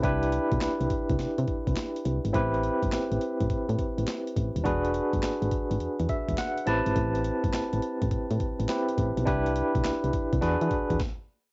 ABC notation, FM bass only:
X:1
M:4/4
L:1/16
Q:"Swing 16ths" 1/4=104
K:Ador
V:1 name="FM bass" clef=bass
C,,3 B,,, z C,, z C,, C, C, z C,, z2 C,, ^G,,, | A,,,3 G,,, z A,,, z A,,, A,, A,, z A,,, z2 A,,, ^D,,, | E,,,3 G,,, z ^G,,, z G,,, E,, E,, z E,,, z2 A,,, G,,, | A,,,3 G,,, A,,, A,,, z A,,, z A,, z A,,, z2 A,,, B,,, |
C,,3 B,,, z C,, z C,, E,, E, z E,, z4 |]